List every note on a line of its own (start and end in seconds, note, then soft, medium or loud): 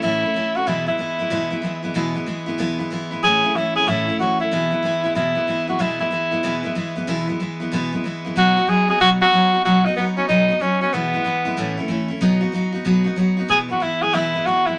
0.02 0.23 A2 medium
0.02 0.23 E3 medium
0.02 0.24 A3 medium
0.02 0.23 C#4 medium
0.02 0.58 E4 loud
0.02 0.21 E4 medium
0.22 0.34 A3 soft
0.22 0.35 C#4 soft
0.22 0.35 E4 medium
0.34 0.55 E3 medium
0.34 0.56 A3 medium
0.34 0.55 C#4 medium
0.34 0.53 E4 medium
0.55 0.67 A3 soft
0.55 0.67 C#4 medium
0.55 0.67 E4 medium
0.55 0.69 F#4 medium
0.66 0.87 E2 medium
0.66 0.88 B2 medium
0.66 0.88 E3 medium
0.66 0.87 G#3 medium
0.66 0.87 B3 medium
0.66 0.87 E4 loud
0.66 0.85 E4 medium
0.87 0.97 E3 medium
0.87 0.98 G#3 soft
0.87 0.99 B3 medium
0.87 0.99 E4 medium
0.87 2.12 E4 medium
0.98 1.19 E3 medium
0.98 1.20 G#3 medium
0.98 1.19 B3 medium
0.98 1.17 E4 medium
1.19 1.30 E3 soft
1.19 1.30 G#3 medium
1.19 1.31 B3 medium
1.19 1.31 E4 medium
1.30 1.51 E2 medium
1.30 1.52 B2 medium
1.30 1.52 E3 medium
1.30 1.51 G#3 medium
1.30 1.50 B3 loud
1.30 1.49 E4 loud
1.50 1.61 E3 medium
1.50 1.62 G#3 medium
1.50 1.63 B3 medium
1.50 1.63 E4 medium
1.62 1.83 E3 medium
1.62 1.84 G#3 medium
1.62 1.83 B3 medium
1.62 1.81 E4 medium
1.83 1.94 E3 soft
1.83 1.94 G#3 medium
1.83 1.95 B3 medium
1.83 1.95 E4 medium
1.94 2.15 E2 medium
1.94 2.16 B2 medium
1.94 2.16 E3 medium
1.94 2.15 G#3 loud
1.94 2.14 B3 medium
1.94 2.13 E4 loud
2.15 2.25 E3 soft
2.15 2.26 G#3 medium
2.15 2.27 B3 medium
2.15 2.27 E4 medium
2.26 2.47 E3 medium
2.26 2.47 G#3 medium
2.26 2.46 B3 medium
2.26 2.45 E4 medium
2.46 2.58 E3 medium
2.46 2.58 G#3 medium
2.46 2.58 B3 medium
2.46 2.58 E4 medium
2.58 2.79 E2 medium
2.58 2.80 B2 medium
2.58 2.80 E3 medium
2.58 2.80 G#3 medium
2.58 2.79 B3 loud
2.58 2.77 E4 loud
2.79 2.89 E3 medium
2.79 2.90 G#3 medium
2.79 2.91 B3 medium
2.79 2.91 E4 medium
2.90 3.12 E3 medium
2.90 3.12 G#3 medium
2.90 3.11 B3 medium
2.90 3.10 E4 medium
3.11 3.22 E3 soft
3.11 3.24 G#3 medium
3.11 3.24 B3 medium
3.11 3.23 E4 medium
3.23 3.44 A2 medium
3.23 3.44 E3 medium
3.23 3.44 A3 medium
3.23 3.44 C#4 medium
3.23 3.42 E4 medium
3.23 3.57 G#4 loud
3.44 3.55 A3 soft
3.44 3.56 C#4 medium
3.44 3.55 E4 medium
3.55 3.76 E3 medium
3.55 3.77 A3 medium
3.55 3.76 C#4 medium
3.55 3.75 E4 loud
3.55 3.74 E4 medium
3.76 3.87 A3 soft
3.76 3.87 C#4 medium
3.76 3.87 E4 medium
3.76 3.90 G#4 loud
3.87 4.08 A2 medium
3.87 4.08 E3 medium
3.87 4.08 A3 medium
3.87 4.07 C#4 medium
3.87 4.19 E4 loud
3.87 4.06 E4 medium
4.07 4.19 A3 soft
4.07 4.20 C#4 medium
4.07 4.19 E4 medium
4.19 4.40 E3 medium
4.19 4.40 A3 medium
4.19 4.40 C#4 medium
4.19 4.39 E4 medium
4.19 4.39 F#4 loud
4.40 4.52 A3 soft
4.40 4.52 C#4 medium
4.40 4.51 E4 medium
4.40 5.12 E4 loud
4.51 4.72 E2 medium
4.51 4.72 B2 medium
4.51 4.73 E3 medium
4.51 4.72 G#3 medium
4.51 4.71 B3 medium
4.51 4.70 E4 medium
4.71 4.81 E3 soft
4.71 4.83 G#3 soft
4.71 4.84 B3 medium
4.71 4.83 E4 medium
4.83 5.04 E3 medium
4.83 5.04 G#3 medium
4.83 5.03 B3 medium
4.83 5.02 E4 medium
5.04 5.14 E3 medium
5.04 5.15 G#3 medium
5.04 5.16 B3 medium
5.04 5.15 E4 medium
5.15 5.36 E2 medium
5.15 5.36 B2 medium
5.15 5.36 E3 medium
5.15 5.36 G#3 medium
5.15 5.35 B3 medium
5.15 5.65 E4 loud
5.15 5.34 E4 medium
5.35 5.46 E3 soft
5.35 5.47 G#3 soft
5.35 5.48 B3 medium
5.35 5.47 E4 medium
5.47 5.68 E3 medium
5.47 5.68 G#3 medium
5.47 5.67 B3 medium
5.47 5.66 E4 medium
5.67 5.78 E3 soft
5.67 5.79 G#3 soft
5.67 5.79 B3 medium
5.67 5.79 E4 medium
5.67 5.82 F#4 medium
5.79 6.00 E2 medium
5.79 6.00 B2 medium
5.79 6.00 E3 medium
5.79 6.00 G#3 medium
5.79 5.99 B3 medium
5.79 6.00 E4 loud
5.79 5.98 E4 medium
5.99 6.09 E3 soft
5.99 6.11 G#3 soft
5.99 6.11 B3 medium
5.99 6.11 E4 medium
5.99 7.25 E4 medium
6.11 6.32 E3 medium
6.11 6.32 G#3 medium
6.11 6.31 B3 medium
6.11 6.30 E4 medium
6.31 6.43 E3 soft
6.31 6.43 G#3 medium
6.31 6.43 B3 medium
6.31 6.43 E4 medium
6.43 6.64 E2 medium
6.43 6.64 B2 medium
6.43 6.64 E3 medium
6.43 6.64 G#3 medium
6.43 6.63 B3 medium
6.43 6.62 E4 loud
6.63 6.74 E3 medium
6.63 6.75 G#3 medium
6.63 6.76 B3 medium
6.63 6.75 E4 medium
6.75 6.96 E3 medium
6.75 6.97 G#3 medium
6.75 6.95 B3 medium
6.75 6.94 E4 medium
6.96 7.07 E3 soft
6.96 7.07 G#3 medium
6.96 7.07 B3 medium
6.96 7.08 E4 medium
7.07 7.28 E2 medium
7.07 7.28 B2 medium
7.07 7.29 E3 loud
7.07 7.28 G#3 medium
7.07 7.28 B3 loud
7.07 7.26 E4 loud
7.27 7.38 E3 soft
7.27 7.39 G#3 medium
7.27 7.40 B3 medium
7.27 7.39 E4 medium
7.40 7.60 E3 medium
7.40 7.61 G#3 medium
7.40 7.60 B3 medium
7.40 7.59 E4 medium
7.60 7.72 E3 medium
7.60 7.72 G#3 medium
7.60 7.72 B3 medium
7.60 7.72 E4 medium
7.72 7.92 E2 medium
7.72 7.93 B2 medium
7.72 7.93 E3 medium
7.72 7.93 G#3 medium
7.72 7.92 B3 loud
7.72 7.91 E4 loud
7.92 8.03 E3 medium
7.92 8.04 G#3 medium
7.92 8.05 B3 medium
7.92 8.04 E4 medium
8.04 8.25 E3 medium
8.04 8.25 G#3 medium
8.04 8.25 B3 medium
8.04 8.23 E4 medium
8.25 8.36 E3 soft
8.25 8.36 G#3 medium
8.25 8.36 B3 medium
8.25 8.36 E4 medium
8.36 8.57 B2 medium
8.36 8.57 F#3 medium
8.36 8.57 B3 medium
8.36 8.57 D#4 medium
8.36 8.71 F#4 loud
8.36 8.55 F#4 medium
8.57 8.68 B3 soft
8.57 8.69 D#4 medium
8.57 8.68 F#4 medium
8.67 8.88 F#3 medium
8.67 8.89 B3 medium
8.67 8.88 D#4 medium
8.67 8.87 F#4 medium
8.67 8.89 G#4 loud
8.88 9.01 B3 soft
8.88 9.01 D#4 medium
8.88 9.00 F#4 medium
8.88 9.00 G#4 loud
9.00 9.21 B2 medium
9.00 9.21 F#3 medium
9.00 9.22 B3 medium
9.00 9.22 D#4 medium
9.00 9.10 F#4 loud
9.00 9.20 F#4 medium
9.21 9.32 B3 soft
9.21 9.33 D#4 soft
9.21 9.32 F#4 medium
9.21 9.62 F#4 loud
9.32 9.53 F#3 medium
9.32 9.54 B3 medium
9.32 9.54 D#4 medium
9.32 9.52 F#4 medium
9.53 9.65 B3 soft
9.53 9.65 D#4 medium
9.53 9.65 F#4 medium
9.65 9.85 B2 medium
9.65 9.86 F#3 medium
9.65 9.86 B3 medium
9.65 9.86 D#4 medium
9.65 9.87 F#4 loud
9.65 9.84 F#4 medium
9.85 9.96 B3 medium
9.85 9.96 D#4 medium
9.85 9.97 D#4 medium
9.85 9.97 F#4 medium
9.96 10.17 F#3 medium
9.96 10.06 B3 medium
9.96 10.18 B3 medium
9.96 10.17 D#4 medium
9.96 10.16 F#4 medium
10.17 10.29 B3 soft
10.17 10.28 C#4 medium
10.17 10.29 D#4 medium
10.17 10.29 F#4 medium
10.28 10.49 B2 medium
10.28 10.50 F#3 medium
10.28 10.50 B3 medium
10.28 10.63 D#4 loud
10.28 10.49 D#4 medium
10.28 10.47 F#4 medium
10.48 10.60 B3 soft
10.48 10.61 D#4 medium
10.48 10.60 F#4 medium
10.60 10.81 F#3 medium
10.60 10.82 B3 medium
10.60 10.81 C#4 medium
10.60 10.81 D#4 medium
10.60 10.80 F#4 medium
10.81 10.93 B3 soft
10.81 10.95 C#4 medium
10.81 10.94 D#4 soft
10.81 10.93 F#4 medium
10.93 11.13 E2 medium
10.93 11.14 B2 medium
10.93 11.14 E3 medium
10.93 11.14 G#3 medium
10.93 11.90 B3 loud
10.93 11.13 B3 medium
10.93 11.12 E4 medium
11.13 11.23 E3 soft
11.13 11.24 G#3 medium
11.13 11.25 B3 soft
11.13 11.25 E4 medium
11.24 11.45 E3 medium
11.24 11.46 G#3 medium
11.24 11.45 B3 medium
11.24 11.44 E4 medium
11.45 11.56 E3 medium
11.45 11.58 G#3 medium
11.45 11.57 B3 medium
11.45 11.57 E4 medium
11.57 11.78 A2 medium
11.57 11.78 E3 medium
11.57 11.78 A3 loud
11.57 11.78 C#4 medium
11.57 11.76 E4 loud
11.77 11.88 A3 medium
11.77 11.89 C#4 medium
11.77 11.89 E4 medium
11.88 12.09 E3 medium
11.88 12.10 A3 medium
11.88 12.09 C#4 medium
11.88 12.07 E4 medium
12.08 12.21 A3 soft
12.08 12.21 C#4 medium
12.08 12.21 E4 medium
12.21 12.42 B2 medium
12.21 12.42 F#3 loud
12.21 12.42 B3 medium
12.21 12.41 D#4 loud
12.21 12.40 F#4 loud
12.41 12.52 B3 medium
12.41 12.53 D#4 medium
12.41 12.53 F#4 medium
12.52 12.73 F#3 medium
12.52 12.74 B3 medium
12.52 12.73 D#4 medium
12.52 12.71 F#4 medium
12.72 12.84 B3 medium
12.72 12.85 D#4 medium
12.72 12.85 F#4 medium
12.85 13.06 B2 medium
12.85 13.06 F#3 medium
12.85 13.06 B3 medium
12.85 13.05 D#4 loud
12.85 13.03 F#4 medium
13.04 13.16 B3 medium
13.04 13.17 D#4 medium
13.04 13.17 F#4 medium
13.16 13.38 F#3 medium
13.16 13.38 B3 medium
13.16 13.38 D#4 medium
13.16 13.36 F#4 medium
13.37 13.49 B3 soft
13.37 13.50 D#4 medium
13.37 13.49 F#4 medium
13.48 13.70 E2 medium
13.48 13.70 B2 medium
13.48 13.70 E3 medium
13.48 13.70 G#3 medium
13.48 13.69 B3 medium
13.48 13.67 E4 medium
13.48 13.59 G#4 loud
13.69 13.79 E3 soft
13.69 13.80 G#3 soft
13.69 13.81 B3 medium
13.69 13.81 E4 medium
13.69 13.84 F#4 medium
13.80 14.02 E3 medium
13.80 14.02 G#3 medium
13.80 14.01 B3 medium
13.80 14.04 E4 loud
13.80 14.00 E4 medium
14.01 14.13 E3 soft
14.01 14.13 G#3 soft
14.01 14.14 B3 medium
14.01 14.13 E4 medium
14.01 14.16 G#4 loud
14.13 14.34 E2 medium
14.13 14.34 B2 medium
14.13 14.35 E3 medium
14.13 14.35 G#3 medium
14.13 14.34 B3 medium
14.13 14.47 E4 loud
14.13 14.33 E4 medium
14.34 14.45 E3 soft
14.34 14.46 G#3 soft
14.34 14.46 B3 medium
14.34 14.46 E4 medium
14.46 14.67 E3 medium
14.46 14.67 G#3 medium
14.46 14.66 B3 medium
14.46 14.65 E4 medium
14.46 14.68 F#4 loud
14.66 14.77 E3 soft
14.66 14.79 G#3 soft
14.66 14.79 B3 soft
14.66 14.78 E4 medium
14.66 14.79 E4 loud